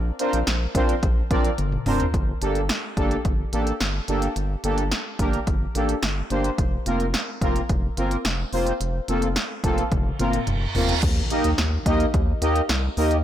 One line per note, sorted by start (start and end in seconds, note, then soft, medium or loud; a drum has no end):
0.00 0.11 A#1 loud
0.19 0.39 C4 medium
0.19 0.39 D4 medium
0.19 0.39 F4 medium
0.19 0.39 A#4 medium
0.19 0.39 C5 loud
0.19 closed hi-hat medium
0.33 0.43 A#1 loud
0.33 closed hi-hat medium
0.47 0.67 A#1 loud
0.47 snare loud
0.47 closed hi-hat medium
0.75 0.94 A#1 loud
0.75 0.95 C4 medium
0.75 0.95 D4 medium
0.75 0.95 F4 medium
0.75 0.95 A#4 medium
0.75 0.95 C5 loud
0.75 kick medium
0.75 closed hi-hat medium
0.89 closed hi-hat medium
1.03 1.22 A#1 loud
1.03 kick loud
1.03 closed hi-hat medium
1.31 1.50 A#1 loud
1.31 1.50 C4 medium
1.31 1.50 D4 medium
1.31 1.50 F4 medium
1.31 1.50 A#4 medium
1.31 1.50 D5 loud
1.31 kick loud
1.31 closed hi-hat medium
1.45 closed hi-hat medium
1.58 1.78 G1 loud
1.58 closed hi-hat medium
1.58 high tom medium
1.72 mid tom medium
1.86 2.06 F1 loud
1.86 2.06 C4 medium
1.86 2.06 D4 medium
1.86 2.06 F4 medium
1.86 2.06 A#4 medium
1.86 2.06 C5 loud
1.86 mid tom loud
1.86 open hi-hat medium
2.00 closed hi-hat medium
2.00 floor tom loud
2.14 2.33 G1 loud
2.14 kick loud
2.14 closed hi-hat medium
2.42 2.71 G1 loud
2.42 2.61 A#3 medium
2.42 2.61 D4 medium
2.42 2.61 G4 medium
2.42 2.61 A4 medium
2.42 closed hi-hat medium
2.55 closed hi-hat medium
2.69 snare loud
2.69 closed hi-hat medium
2.97 3.17 G1 loud
2.97 3.17 A#3 medium
2.97 3.17 D4 medium
2.97 3.17 G4 medium
2.97 3.17 A4 medium
2.97 kick medium
2.97 closed hi-hat medium
3.11 closed hi-hat medium
3.25 3.44 G1 medium
3.25 kick loud
3.25 closed hi-hat medium
3.53 3.72 A1 medium
3.53 3.72 A#3 medium
3.53 3.72 D4 medium
3.53 3.72 G4 medium
3.53 3.72 A4 medium
3.53 closed hi-hat medium
3.67 closed hi-hat medium
3.80 4.00 G1 loud
3.80 snare loud
3.80 closed hi-hat medium
4.08 4.28 G1 loud
4.08 4.28 A#3 medium
4.08 4.28 D4 medium
4.08 4.28 G4 medium
4.08 4.28 A4 medium
4.08 closed hi-hat medium
4.22 closed hi-hat soft
4.36 4.56 G1 loud
4.36 closed hi-hat medium
4.64 4.93 G1 loud
4.64 4.83 A#3 medium
4.64 4.83 D4 medium
4.64 4.83 G4 medium
4.64 4.83 A4 medium
4.64 closed hi-hat medium
4.78 closed hi-hat medium
4.92 snare loud
4.92 closed hi-hat medium
5.19 5.39 G1 medium
5.19 5.39 A#3 medium
5.19 5.39 D4 medium
5.19 5.39 G4 medium
5.19 5.39 A#4 medium
5.19 kick medium
5.19 closed hi-hat medium
5.33 closed hi-hat medium
5.47 5.67 G1 loud
5.47 kick loud
5.47 closed hi-hat medium
5.75 5.94 A1 medium
5.75 5.95 A#3 medium
5.75 5.95 D4 medium
5.75 5.95 G4 medium
5.75 5.95 A4 medium
5.75 closed hi-hat medium
5.89 closed hi-hat medium
6.03 6.22 G1 loud
6.03 snare loud
6.03 closed hi-hat medium
6.30 6.50 G1 loud
6.30 6.50 A#3 medium
6.30 6.50 D4 medium
6.30 6.50 G4 medium
6.30 6.50 C5 loud
6.30 closed hi-hat medium
6.44 closed hi-hat soft
6.58 6.78 F1 loud
6.58 kick loud
6.58 closed hi-hat medium
6.86 7.15 F1 loud
6.86 7.06 A#3 medium
6.86 7.06 C4 medium
6.86 7.06 F4 medium
6.86 7.06 A#4 medium
6.86 closed hi-hat medium
7.00 closed hi-hat medium
7.14 snare loud
7.14 closed hi-hat medium
7.41 7.61 F1 loud
7.41 7.61 A#3 medium
7.41 7.61 C4 medium
7.41 7.61 F4 medium
7.41 7.61 A#4 loud
7.41 kick medium
7.41 closed hi-hat medium
7.56 closed hi-hat medium
7.69 7.89 F1 loud
7.69 kick loud
7.69 closed hi-hat medium
7.97 8.17 G1 medium
7.97 8.17 A#3 medium
7.97 8.17 C4 medium
7.97 8.17 F4 medium
7.97 8.17 A#4 medium
7.97 closed hi-hat medium
8.11 closed hi-hat medium
8.25 8.44 F1 loud
8.25 snare loud
8.25 closed hi-hat medium
8.53 8.72 F1 loud
8.53 8.72 A#3 medium
8.53 8.72 C4 medium
8.53 8.72 F4 medium
8.53 8.72 C5 medium
8.53 open hi-hat medium
8.67 closed hi-hat soft
8.81 9.00 F1 loud
8.81 closed hi-hat medium
9.08 9.38 F1 medium
9.08 9.28 A#3 medium
9.08 9.28 C4 medium
9.08 9.28 F4 medium
9.08 9.28 A4 medium
9.08 closed hi-hat medium
9.22 closed hi-hat medium
9.36 snare loud
9.36 closed hi-hat medium
9.64 9.83 F1 loud
9.64 9.83 A#3 medium
9.64 9.83 C4 medium
9.64 9.83 F4 medium
9.64 9.83 A4 loud
9.64 kick medium
9.64 closed hi-hat medium
9.78 closed hi-hat medium
9.92 10.11 F1 loud
9.92 kick loud
9.92 closed hi-hat medium
9.92 high tom medium
9.92 reverse cymbal medium
10.19 10.39 G1 loud
10.19 10.39 A#3 medium
10.19 10.39 C4 medium
10.19 10.39 F4 medium
10.19 10.39 A#4 loud
10.19 closed hi-hat medium
10.19 mid tom medium
10.33 closed hi-hat medium
10.33 mid tom medium
10.47 10.67 F1 loud
10.47 closed hi-hat medium
10.47 mid tom medium
10.75 10.94 F1 loud
10.75 10.95 A#3 medium
10.75 10.95 C4 medium
10.75 10.95 F4 medium
10.75 10.95 A#4 loud
10.75 floor tom loud
10.75 open hi-hat medium
10.89 closed hi-hat medium
10.89 floor tom medium
11.03 11.22 D#2 loud
11.03 kick loud
11.03 closed hi-hat medium
11.03 crash loud
11.03 impact medium
11.30 11.50 A#3 medium
11.30 11.50 D#4 medium
11.30 11.50 G4 medium
11.30 11.50 A#4 medium
11.30 11.50 D#5 medium
11.30 closed hi-hat medium
11.44 11.54 D#2 loud
11.44 closed hi-hat medium
11.58 11.78 D#2 loud
11.58 snare loud
11.58 closed hi-hat medium
11.86 12.05 D#2 loud
11.86 12.06 A#3 medium
11.86 12.06 D#4 medium
11.86 12.06 G4 medium
11.86 12.06 A#4 medium
11.86 12.06 D#5 loud
11.86 kick medium
11.86 closed hi-hat medium
12.00 closed hi-hat medium
12.14 12.33 D#2 loud
12.14 kick loud
12.14 closed hi-hat medium
12.42 12.61 D#2 loud
12.42 12.61 A#3 medium
12.42 12.61 D#4 medium
12.42 12.61 G4 medium
12.42 12.61 A#4 medium
12.42 12.61 D#5 loud
12.42 closed hi-hat medium
12.56 closed hi-hat medium
12.69 12.89 C2 loud
12.69 snare loud
12.69 closed hi-hat medium
12.97 13.24 D#2 medium
12.97 13.17 A#3 medium
12.97 13.17 D#4 medium
12.97 13.17 G4 medium
12.97 13.17 A#4 medium
12.97 13.17 D#5 loud
12.97 open hi-hat medium
13.11 closed hi-hat medium